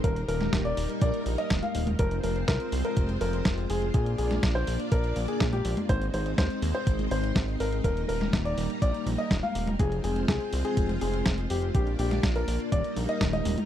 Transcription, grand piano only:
\new Staff \with { instrumentName = "Grand piano" } { \time 4/4 \key ees \major \tempo 4 = 123 bes'16 r16 bes'8 r16 d''8 r16 d''8 r16 ees''16 r16 f''8 r16 | bes'16 r16 bes'16 r16 bes'8 r16 bes'8 r16 bes'8. r16 aes'16 r16 | aes'16 r16 aes'8 r16 c''8 r16 bes'8 r16 aes'16 r16 g'8 r16 | c''16 r16 c''16 r16 c''8 r16 c''8 r16 c''8. r16 bes'16 r16 |
bes'16 r16 bes'8 r16 d''8 r16 d''8 r16 ees''16 r16 f''8 r16 | aes'16 r16 aes'16 r16 aes'8 r16 aes'8 r16 aes'8. r16 g'16 r16 | g'16 r16 g'8 r16 bes'8 r16 d''8 r16 ees''16 r16 ees''8 r16 | }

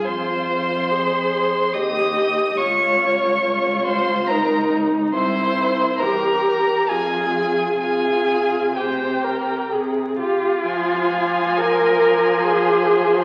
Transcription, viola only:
\new Staff \with { instrumentName = "Viola" } { \time 3/4 \key f \minor \tempo 4 = 70 f'4 aes'4 g'4 | f'4 f'4 ees'4 | e'4 g'4 f'4 | f'4 c''8 bes'8 aes'8 g'8 |
f2. | }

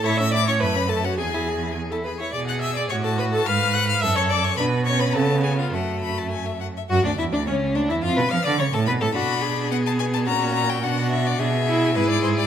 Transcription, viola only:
\new Staff \with { instrumentName = "Viola" } { \time 2/4 \key e \mixolydian \tempo 4 = 107 cis''16 e''16 d''16 cis''16 b'8 a'16 fis'16 | gis'4 r16 a'16 b'16 cis''16 | \key fis \minor d''16 fis''16 e''16 d''16 cis''16 a'16 b'16 a'16 | f''8 fis''16 f''16 e''16 cis''16 d''16 cis''16 |
b'8 cis''16 b'16 a'8 gis'16 eis'16 | fis'4. r8 | fis'16 d'16 e'16 d'16 cis'8 d'16 e'16 | f'16 b'16 f''16 d''16 cis''16 a'16 b'16 a'16 |
d'4 b4 | cis'4 d'4 | \key e \phrygian d'8 e'8 e'4 | }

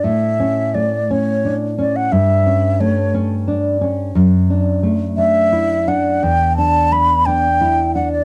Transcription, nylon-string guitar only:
\new Staff \with { instrumentName = "Nylon-string guitar" } { \time 6/8 \key a \mixolydian \tempo 4. = 58 a,8 cis'8 a8 cis'8 d'8 cis'8 | g,8 cis'8 a8 cis'8 d'8 cis'8 | fis,8 d'8 a8 d'8 e'8 d'8 | e,8 d'8 b8 d'8 e'8 d'8 | }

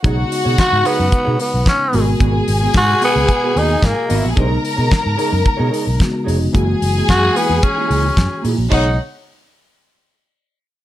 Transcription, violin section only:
\new Staff \with { instrumentName = "Violin section" } { \time 4/4 \key b \major \tempo 4 = 111 <fis' fis''>2. r8 <gis' gis''>8~ | <gis' gis''>2.~ <gis' gis''>16. r32 <dis' dis''>32 <e' e''>32 <fis' fis''>32 <gis' gis''>32 | <ais' ais''>2.~ <ais' ais''>8 r8 | <gis' gis''>2.~ <gis' gis''>8 r8 |
<dis' cis'' fis''>8 r2. r8 | }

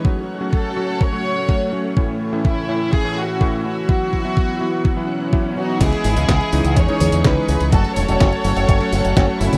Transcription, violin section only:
\new Staff \with { instrumentName = "Violin section" } { \time 4/4 \key cis \minor \tempo 4 = 125 r4 a'4 cis''2 | r4 e'4 gis'8 fis'4 fis'8~ | fis'2. r8 <dis' fis'>8 | <e' gis'>2 <gis' cis''>4 <gis' b'>4 |
<fis' a'>8 <a' cis''>2. <cis' e'>8 | }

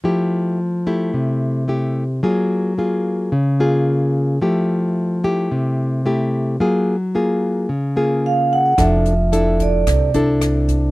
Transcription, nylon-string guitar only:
\new Staff \with { instrumentName = "Nylon-string guitar" } { \time 4/4 \key f \major \tempo 4 = 110 << { <a e' g'>4 r8 <a e' g'>4. <a e' g'>8 r8 | <bes f' aes'>4 <bes f' aes'>4 r8 <bes f' aes'>4. | <a e' g'>4. <a e' g'>4. <a e' g'>4 | <bes f' aes'>8 r8 <bes f' aes'>4 r8 <bes f' aes'>4. |
<d' e' a'>8 r8 <d' e' a'>4. <d' e' a'>4. | } \\ { f2 c2 | ges2 des2 | f2 c2 | ges2 des2 |
f2 c2 | } >> }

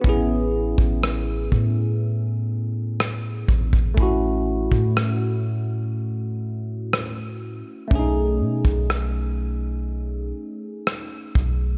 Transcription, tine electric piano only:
\new Staff \with { instrumentName = "Tine electric piano" } { \time 4/4 \key a \lydian \tempo 4 = 61 <b cis' e' gis'>1 | <a cis' e' fis'>1 | <a cis' d' dis' gis'>1 | }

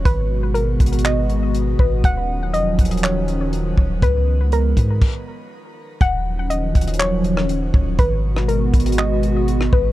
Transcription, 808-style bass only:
\new Staff \with { instrumentName = "808-style bass" } { \clef bass \time 4/4 \key ees \minor \tempo 4 = 121 aes,,4. aes,,2 aes,,8 | ees,,4 f,,16 ees,,16 ees,,2 ees,,8 | des,4. aes,8 r2 | ees,,4. ees,,2 ees,,8 |
aes,,4. aes,,2 aes,,8 | }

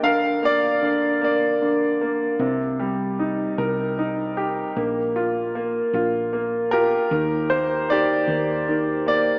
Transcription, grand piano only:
<<
  \new Staff \with { instrumentName = "Grand piano" } { \time 6/8 \key bes \major \tempo 4. = 51 << { f''8 d''4 d''4 r8 | r2. | r2 r8 bes'8~ | bes'8 c''8 d''4. d''8 | } \\ { bes'4. r4. | r2. | r2 r8 g'8~ | g'4 g'4. r8 | } >> }
  \new Staff \with { instrumentName = "Grand piano" } { \time 6/8 \key bes \major d8 bes8 d8 bes8 d8 bes8 | c8 g8 ees'8 bes'8 ees'8 g'8 | bes8 f'8 bes8 f'8 bes8 f'8 | ees8 bes8 ees8 bes8 ees8 bes8 | }
>>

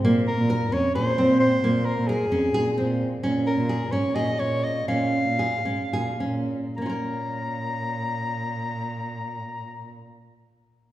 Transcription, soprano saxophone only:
\new Staff \with { instrumentName = "Soprano saxophone" } { \time 7/8 \key bes \minor \tempo 4 = 122 r8 bes'4 des''8 c''4 c''8~ | c''8 bes'8 aes'2 r8 | r8 bes'4 des''8 ees''8 des''8 ees''8 | f''2. r8 |
bes''2.~ bes''8~ | bes''2.~ bes''8 | }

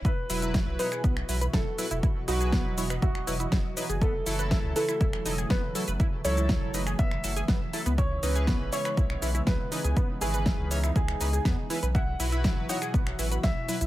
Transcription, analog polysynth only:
\new Staff \with { instrumentName = "Analog polysynth" } { \time 4/4 \key e \major \tempo 4 = 121 r8 <fis e' b'>4 <fis e' cis''>8 r8 <fis e' b'>8 r8 <fis e' b'>8 | r8 <fis e' b'>4 <fis e' cis''>8 r8 <fis e' b'>8 r8 <fis e' b'>8 | r8 <fis e' a'>4 <fis e' b'>8 r8 <fis e' a'>8 r8 <fis e' a'>8 | r8 <fis e' a'>4 <fis e' b'>8 r8 <fis e' a'>8 r8 <fis e' a'>8 |
r8 <e cis' b'>4 <e cis' cis''>8 r8 <e cis' b'>8 r8 <e cis' b'>8 | r8 <e cis' b'>4 <e cis' cis''>8 r8 <e cis' b'>8 r8 <e cis' b'>8 | r8 <fis e' b'>4 <fis e' cis''>8 r8 <fis e' b'>8 r8 <fis e' b'>8 | }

